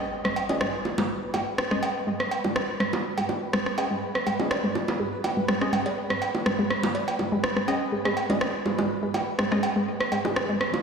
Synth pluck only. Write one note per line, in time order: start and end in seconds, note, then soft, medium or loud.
0.25 0.31 G#3 medium
0.61 0.66 G#3 medium
0.98 1.05 G#3 medium
1.34 1.39 G#3 medium
1.71 1.78 G#3 medium
2.07 2.12 G#3 medium
2.44 2.51 G#3 medium
2.80 2.85 G#3 medium
3.18 3.24 G#3 medium
3.53 3.58 G#3 medium
3.91 3.97 G#3 medium
4.26 4.31 G#3 medium
4.64 4.70 G#3 medium
5.00 5.05 G#3 medium
5.37 5.40 G#3 medium
5.48 5.56 G#3 medium
5.73 5.80 G#3 medium
5.86 5.90 G#4 medium
6.10 6.17 G#3 medium
6.46 6.51 G#3 medium
6.59 6.63 G#3 medium
6.83 6.90 G#3 medium
7.19 7.24 G#3 medium
7.32 7.37 G#3 loud
7.57 7.63 G#3 medium
7.92 7.97 G#3 medium
8.05 8.10 G#3 loud
8.30 8.36 G#3 medium
8.66 8.71 G#3 medium
8.78 8.83 G#3 loud
9.03 9.09 G#3 medium
9.39 9.44 G#3 medium
9.52 9.56 G#3 medium
9.76 9.83 G#3 medium
10.12 10.17 G#3 medium
10.25 10.29 G#3 medium
10.49 10.56 G#3 medium